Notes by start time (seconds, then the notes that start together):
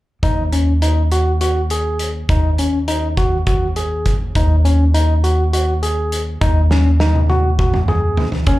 0.23 D#2 D#4, kick, closed hi-hat
0.53 C#4, closed hi-hat
0.82 D#4, closed hi-hat
1.12 F#4, closed hi-hat
1.41 F#4, closed hi-hat
1.70 G#4, closed hi-hat
1.99 closed hi-hat
2.29 D#2 D#4, kick, closed hi-hat
2.58 C#4, closed hi-hat
2.88 D#4, closed hi-hat
3.17 F#4, kick, closed hi-hat
3.47 F#4, kick, closed hi-hat
3.76 G#4, closed hi-hat
4.06 kick, closed hi-hat
4.35 D#2 D#4, kick, closed hi-hat
4.65 C#4, closed hi-hat
4.94 D#4, closed hi-hat
5.24 F#4, closed hi-hat
5.53 F#4, closed hi-hat
5.83 G#4, closed hi-hat
6.12 closed hi-hat
6.41 D#2 D#4, kick, closed hi-hat
6.71 C#4, snare
7.00 D#4, snare
7.15 high tom
7.30 F#4, high tom
7.59 F#4, kick, mid tom
7.74 mid tom
7.88 G#4, mid tom
8.17 floor tom
8.32 floor tom
8.47 D#2 C#4, kick, closed hi-hat